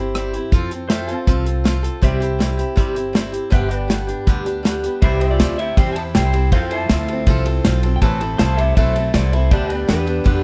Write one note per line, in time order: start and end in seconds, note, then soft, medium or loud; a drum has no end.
0.00 0.36 G1 medium
0.00 0.14 C4 soft
0.00 0.16 E4 medium
0.00 0.15 G4 medium
0.00 0.51 C5 medium
0.00 0.52 E5 medium
0.00 0.53 G5 medium
0.15 0.33 G3 medium
0.15 0.34 C4 medium
0.15 0.34 E4 medium
0.15 0.32 G4 medium
0.15 cross-stick loud
0.15 closed hi-hat medium
0.33 0.52 C4 soft
0.33 0.53 E4 soft
0.33 0.52 G4 soft
0.33 closed hi-hat medium
0.52 1.11 F2 medium
0.52 0.71 F3 medium
0.52 0.71 C4 medium
0.52 0.71 F4 medium
0.52 0.70 A4 medium
0.52 kick loud
0.52 closed hi-hat medium
0.71 0.90 C4 soft
0.71 0.91 F4 medium
0.71 0.90 A4 medium
0.71 closed hi-hat medium
0.89 1.09 F3 medium
0.89 1.09 C4 medium
0.89 1.09 F4 medium
0.89 2.01 C5 medium
0.89 1.10 E5 medium
0.89 1.16 G5 medium
0.89 snare loud
0.89 closed hi-hat medium
0.93 1.07 A4 medium
1.08 1.27 C4 soft
1.08 1.27 F4 soft
1.08 1.27 A4 medium
1.08 2.02 F5 medium
1.08 closed hi-hat medium
1.16 2.02 A5 medium
1.27 1.86 C2 medium
1.27 1.46 F3 medium
1.27 1.46 C4 medium
1.27 1.46 F4 medium
1.27 1.44 A4 medium
1.27 kick loud
1.27 closed hi-hat medium
1.45 1.64 C4 soft
1.45 1.65 F4 medium
1.45 1.64 A4 soft
1.45 closed hi-hat medium
1.64 1.83 F3 medium
1.64 1.84 C4 medium
1.64 1.83 F4 medium
1.64 1.82 A4 medium
1.64 snare loud
1.64 closed hi-hat medium
1.83 2.01 C4 soft
1.83 2.03 F4 medium
1.83 2.02 A4 medium
1.83 closed hi-hat medium
2.02 2.61 C2 medium
2.02 2.21 C3 medium
2.02 2.21 G3 medium
2.02 2.21 C4 medium
2.02 2.22 E4 medium
2.02 2.19 G4 loud
2.02 3.51 C5 medium
2.02 3.52 E5 medium
2.02 kick loud
2.02 closed hi-hat medium
2.06 3.53 G5 medium
2.20 2.39 C4 soft
2.20 2.40 E4 medium
2.20 2.39 G4 medium
2.20 closed hi-hat medium
2.39 2.58 G3 medium
2.39 2.59 C4 medium
2.39 2.58 E4 medium
2.39 2.56 G4 medium
2.39 snare medium
2.39 closed hi-hat medium
2.57 2.76 C4 soft
2.57 2.77 E4 medium
2.57 2.77 G4 medium
2.57 closed hi-hat medium
2.76 3.36 G1 medium
2.76 2.95 C3 medium
2.76 2.96 G3 medium
2.76 2.96 C4 medium
2.76 2.95 E4 medium
2.76 2.94 G4 loud
2.76 kick loud
2.76 closed hi-hat medium
2.95 3.13 C4 soft
2.95 3.14 E4 soft
2.95 3.14 G4 medium
2.95 closed hi-hat medium
3.13 3.33 G3 medium
3.13 3.34 C4 medium
3.13 3.32 E4 medium
3.13 3.31 G4 medium
3.13 snare loud
3.13 closed hi-hat medium
3.32 3.51 C4 soft
3.32 3.51 E4 soft
3.32 3.51 G4 medium
3.32 closed hi-hat medium
3.50 4.11 G1 medium
3.50 3.70 G2 medium
3.50 3.70 D3 medium
3.50 3.71 G3 medium
3.50 3.70 B3 medium
3.50 3.69 D4 medium
3.50 3.68 G4 loud
3.50 3.72 C5 medium
3.50 3.78 E5 medium
3.50 kick loud
3.50 closed hi-hat medium
3.55 5.02 G5 medium
3.69 3.87 G3 soft
3.69 3.88 B3 soft
3.69 3.89 D4 soft
3.69 3.89 G4 medium
3.69 5.01 B4 medium
3.69 closed hi-hat soft
3.78 5.01 D5 medium
3.88 4.08 G3 medium
3.88 4.08 B3 medium
3.88 4.07 D4 medium
3.88 4.06 G4 medium
3.88 snare loud
3.88 closed hi-hat medium
4.07 4.26 G3 soft
4.07 4.27 B3 soft
4.07 4.27 D4 medium
4.07 4.27 G4 medium
4.07 closed hi-hat medium
4.27 4.86 D2 medium
4.27 4.46 G2 medium
4.27 4.46 D3 medium
4.27 4.46 G3 medium
4.27 4.46 B3 medium
4.27 4.45 D4 medium
4.27 4.44 G4 medium
4.27 kick loud
4.27 closed hi-hat medium
4.45 4.62 G3 soft
4.45 4.63 B3 soft
4.45 4.64 D4 medium
4.45 4.64 G4 medium
4.45 closed hi-hat medium
4.63 4.83 G3 medium
4.63 4.83 B3 medium
4.63 4.83 D4 medium
4.63 4.82 G4 medium
4.63 snare loud
4.63 closed hi-hat medium
4.83 5.01 G3 soft
4.83 5.02 B3 medium
4.83 5.03 D4 soft
4.83 5.02 G4 soft
4.83 closed hi-hat medium
5.02 5.39 C2 medium
5.02 5.21 C3 medium
5.02 5.21 G3 medium
5.02 5.21 C4 medium
5.02 5.28 E4 medium
5.02 5.21 E4 medium
5.02 5.19 G4 loud
5.02 5.24 B4 medium
5.02 5.31 C5 loud
5.02 5.30 D5 medium
5.02 6.52 G5 medium
5.02 kick loud
5.02 ride medium
5.20 5.39 C4 soft
5.20 5.40 E4 soft
5.20 5.39 G4 medium
5.20 6.51 C5 medium
5.20 ride medium
5.30 5.57 F4 medium
5.30 5.58 D5 loud
5.30 6.52 E5 medium
5.39 5.76 D2 medium
5.39 5.58 G3 medium
5.39 5.59 C4 medium
5.39 5.59 E4 medium
5.39 5.57 G4 medium
5.39 snare loud
5.39 ride medium
5.58 5.77 C4 soft
5.58 5.78 E4 medium
5.58 5.77 G4 medium
5.58 5.77 E5 loud
5.58 ride medium
5.77 6.14 E2 medium
5.77 5.96 C3 medium
5.77 5.96 G3 medium
5.77 5.96 C4 medium
5.77 5.97 E4 medium
5.77 5.95 G4 medium
5.77 5.91 C5 medium
5.77 5.92 G5 loud
5.77 kick loud
5.77 ride medium
5.93 6.15 G4 medium
5.93 5.95 G#5 medium
5.93 6.01 A5 loud
5.93 ride medium
5.98 6.15 C4 soft
5.98 6.16 E4 medium
5.98 6.03 C5 medium
6.15 6.51 C2 loud
6.15 6.34 G3 medium
6.15 6.34 C4 medium
6.15 6.34 E4 medium
6.15 6.32 G4 medium
6.15 6.51 C5 medium
6.15 6.52 G5 loud
6.15 snare loud
6.15 ride medium
6.33 6.53 C4 soft
6.33 6.53 E4 soft
6.33 6.52 G4 medium
6.33 ride medium
6.52 6.88 F2 medium
6.52 6.71 F3 medium
6.52 6.72 C4 medium
6.52 6.72 F4 medium
6.52 6.59 A4 medium
6.52 6.70 A4 medium
6.52 8.01 C5 medium
6.52 6.57 F5 loud
6.52 6.80 G5 medium
6.52 kick loud
6.52 ride medium
6.71 6.89 C4 soft
6.71 7.80 E4 medium
6.71 6.91 F4 soft
6.71 6.90 A4 medium
6.71 7.79 C5 loud
6.71 ride medium
6.80 8.02 A5 medium
6.89 7.26 D2 loud
6.89 7.08 F3 medium
6.89 7.09 C4 medium
6.89 7.09 F4 medium
6.89 7.08 A4 medium
6.89 snare loud
6.89 ride medium
7.08 7.27 F4 soft
7.08 7.27 A4 medium
7.08 ride medium
7.13 7.27 C4 soft
7.27 7.63 C2 medium
7.27 7.46 F3 loud
7.27 7.46 C4 loud
7.27 7.46 F4 medium
7.27 7.45 A4 loud
7.27 kick loud
7.27 ride medium
7.46 7.65 C4 soft
7.46 7.66 F4 medium
7.46 7.65 A4 medium
7.46 ride medium
7.65 8.01 B1 loud
7.65 7.83 F3 medium
7.65 7.84 C4 medium
7.65 7.83 F4 medium
7.65 7.82 A4 medium
7.65 snare loud
7.65 ride loud
7.83 8.02 C4 soft
7.83 8.03 F4 medium
7.83 8.02 A4 medium
7.83 ride medium
7.96 8.02 G5 medium
8.02 8.38 A1 medium
8.02 8.20 A2 medium
8.02 8.21 E3 medium
8.02 8.21 A3 medium
8.02 8.21 C4 medium
8.02 8.20 E4 medium
8.02 8.19 A4 medium
8.02 8.37 C5 medium
8.02 8.37 A5 loud
8.02 kick loud
8.02 ride medium
8.21 8.37 A3 soft
8.21 8.39 C4 soft
8.21 8.40 E4 medium
8.21 8.39 A4 medium
8.21 ride medium
8.38 8.76 C2 medium
8.38 8.57 A3 medium
8.38 8.58 C4 medium
8.38 8.58 E4 medium
8.38 8.56 A4 medium
8.38 9.50 C5 medium
8.38 8.57 C5 medium
8.38 8.59 F5 medium
8.38 8.58 A5 loud
8.38 9.51 A5 medium
8.38 snare loud
8.38 ride medium
8.57 8.76 A3 soft
8.57 8.77 C4 medium
8.57 8.77 E4 soft
8.57 8.76 G4 medium
8.57 8.76 A4 medium
8.57 8.74 E5 loud
8.57 9.50 E5 medium
8.57 ride medium
8.75 9.13 B1 medium
8.75 8.95 A2 medium
8.75 8.96 E3 medium
8.75 8.96 A3 medium
8.75 8.96 C4 medium
8.75 8.96 E4 medium
8.75 9.12 A4 medium
8.75 8.94 A4 loud
8.75 9.13 E5 loud
8.75 kick loud
8.75 ride medium
8.96 9.13 A3 soft
8.96 9.14 C4 soft
8.96 9.15 E4 soft
8.96 9.14 A4 medium
8.96 ride medium
9.14 9.50 C2 loud
9.14 9.33 A3 medium
9.14 9.33 C4 medium
9.14 9.33 E4 medium
9.14 9.32 A4 medium
9.14 9.31 D5 medium
9.14 snare loud
9.14 ride medium
9.31 9.50 E4 medium
9.31 9.52 E4 soft
9.31 9.52 A4 medium
9.31 9.50 C5 medium
9.31 ride medium
9.35 9.52 A3 soft
9.35 9.52 C4 soft
9.51 9.88 D2 medium
9.51 9.70 G2 medium
9.51 9.70 D3 medium
9.51 9.70 G3 medium
9.51 9.70 B3 medium
9.51 9.70 D4 loud
9.51 9.87 G4 medium
9.51 9.69 G4 loud
9.51 9.71 C5 medium
9.51 9.89 D5 loud
9.51 9.77 E5 medium
9.51 9.78 A5 medium
9.51 kick loud
9.51 ride medium
9.70 9.86 G3 soft
9.70 9.88 B3 soft
9.70 9.89 D4 soft
9.70 9.89 G4 medium
9.70 10.44 B4 medium
9.70 ride medium
9.77 10.44 D5 medium
9.77 10.44 G5 medium
9.88 10.25 E2 medium
9.88 10.07 G3 medium
9.88 10.07 B3 medium
9.88 10.06 D4 medium
9.88 10.44 D4 medium
9.88 10.05 G4 medium
9.88 10.44 B4 medium
9.88 snare loud
9.88 ride medium
10.06 10.24 G3 soft
10.06 10.25 B3 medium
10.06 10.25 D4 soft
10.06 10.25 G4 medium
10.06 ride medium
10.24 10.44 F2 medium
10.24 10.44 G2 medium
10.24 10.44 D3 medium
10.24 10.44 G3 medium
10.24 10.43 B3 medium
10.24 10.42 D4 medium
10.24 10.41 G4 medium
10.24 kick loud
10.24 ride medium